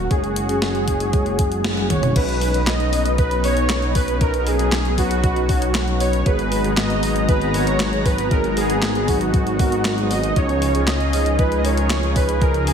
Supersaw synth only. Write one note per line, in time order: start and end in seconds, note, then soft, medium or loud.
0.00 0.12 F#4 loud
0.11 1.86 G#4 loud
1.90 2.17 C#5 loud
2.16 2.69 B4 loud
2.67 3.15 D#5 loud
3.19 3.45 B4 loud
3.44 3.92 C#5 loud
3.96 4.19 B4 loud
4.21 4.38 A#4 loud
4.40 4.47 A#4 medium
4.47 5.00 G#4 loud
4.98 6.04 F#4 loud
6.00 6.24 C#5 loud
6.26 6.79 B4 loud
6.77 7.25 D#5 loud
7.29 7.55 B4 loud
7.54 8.07 C#5 loud
8.06 8.32 B4 loud
8.31 8.58 A#4 loud
8.57 9.10 G#4 loud
9.08 10.14 F#4 loud
10.11 10.37 D#5 loud
10.36 10.89 C#5 loud
10.88 11.40 D#5 loud
11.39 11.58 B4 loud
11.58 11.65 D#5 medium
11.65 12.17 C#5 loud
12.16 12.42 B4 loud
12.42 12.68 A#4 loud
12.67 12.73 G#4 loud